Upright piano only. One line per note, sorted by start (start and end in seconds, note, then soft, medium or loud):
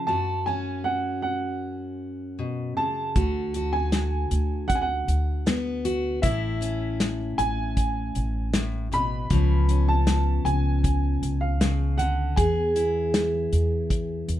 0.07 0.47 A5 medium
0.46 0.86 G#5 medium
0.84 1.21 F#5 medium
1.22 2.34 F#5 medium
2.77 3.76 A5 medium
3.73 4.65 G#5 medium
4.68 4.76 F#5 medium
4.75 4.83 G#5 medium
4.81 6.27 F#5 medium
6.22 6.96 E5 medium
7.38 8.50 G#5 medium
8.94 9.85 B5 medium
9.88 10.48 A5 medium
10.45 11.44 G#5 medium
11.41 12.00 F5 medium
11.98 12.34 F#5 medium
12.36 14.40 G#5 medium